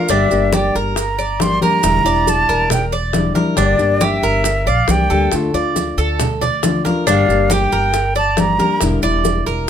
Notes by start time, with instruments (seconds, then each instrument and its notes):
Already playing: flute F5
0.08 upright bass G1, nylon-string guitar D3 G3 A#3 D4 G4, cuban tres D4, flute E5, high bongo, maracas
0.31 upright bass G1, nylon-string guitar G3 A#3 D4 G4, high conga, maracas
0.53 cuban tres G4, flute D5, high bongo, high conga, maracas
0.74 upright bass G1, cuban tres A#4, high bongo, high conga, maracas
0.96 flute A#5, muted nylon-string guitar stroke, high bongo, high conga, maracas
1.18 cuban tres D5, high bongo, high conga, maracas
1.39 nylon-string guitar G3 A#3 D4 G4, flute C6, high bongo, low bongo, high conga, maracas
1.62 nylon-string guitar G3 A#3 D4 G4, cuban tres A#4, flute A#5, high bongo, high conga, maracas
1.83 upright bass E1, nylon-string guitar D3 G3 D4 E4, high bongo, high conga, maracas
2.05 upright bass E1, nylon-string guitar G3 D4 E4, cuban tres D5, high conga, maracas
2.27 flute A5, high bongo, high conga, maracas
2.49 upright bass E1, cuban tres A#4, maracas
2.70 flute G5, muted nylon-string guitar stroke, high bongo, high conga, low conga, maracas
2.92 cuban tres D5, high conga, maracas
3.13 nylon-string guitar D3 G3 D4 E4, high bongo, low bongo, high conga, maracas
3.35 nylon-string guitar G3 D4 E4, cuban tres A#4, high conga, maracas
3.56 upright bass G1, nylon-string guitar D3 G3 A#3 D4 G4, cuban tres D4, high bongo, high conga, maracas
3.60 flute D5
3.79 upright bass G1, nylon-string guitar G3 A#3 D4 G4, high conga, maracas
4.00 cuban tres G4, high bongo, high conga, maracas
4.04 flute E5
4.22 upright bass G1, cuban tres A#4, high bongo, high conga, maracas
4.44 muted nylon-string guitar stroke, high bongo, high conga, maracas
4.66 upright bass A#1, cuban tres D5, flute F5, high bongo, high conga, maracas
4.88 upright bass C2, nylon-string guitar G3 A#3 D4 G4, flute G5, high bongo, low bongo, high conga, maracas
5.10 upright bass D2, nylon-string guitar G3 A#3 D4 G4, cuban tres A4, high bongo, maracas
5.32 upright bass D2, nylon-string guitar D3 A3 D4 F4, high bongo, high conga, maracas
5.54 upright bass D2, nylon-string guitar A3 D4 F4, cuban tres D5, high conga, maracas
5.76 high bongo, high conga, maracas
5.98 upright bass D2, cuban tres A4, maracas
6.20 muted nylon-string guitar stroke, high bongo, high conga, low conga, maracas
6.41 cuban tres D5, high conga, low conga, maracas
6.63 nylon-string guitar D3 A3 D4 F4, high bongo, low bongo, high conga, maracas
6.85 nylon-string guitar A3 D4 F4, cuban tres A#4, high conga, maracas
7.07 upright bass G1, nylon-string guitar D3 G3 A#3 D4 G4, cuban tres D4, flute F5, high bongo, maracas
7.29 upright bass G1, nylon-string guitar G3 A#3 D4 G4, high conga, maracas
7.50 cuban tres G4, flute G5, high bongo, high conga, maracas
7.72 upright bass G1, cuban tres A#4, high bongo, high conga, maracas
7.93 muted nylon-string guitar stroke, high bongo, high conga, maracas
8.15 cuban tres D5, flute A5, high bongo, high conga, maracas
8.37 nylon-string guitar G3 A#3 D4 G4, flute A#5, high bongo, low bongo, high conga, maracas
8.59 nylon-string guitar G3 A#3 D4 G4, cuban tres A#4, high bongo, high conga, maracas
8.81 upright bass E1, nylon-string guitar D3 G3 D4 E4, high bongo, high conga, maracas
9.02 upright bass E1, nylon-string guitar G3 D4 E4, cuban tres D5, high conga, maracas
9.25 high bongo, high conga, maracas
9.46 upright bass E1, cuban tres A#4, maracas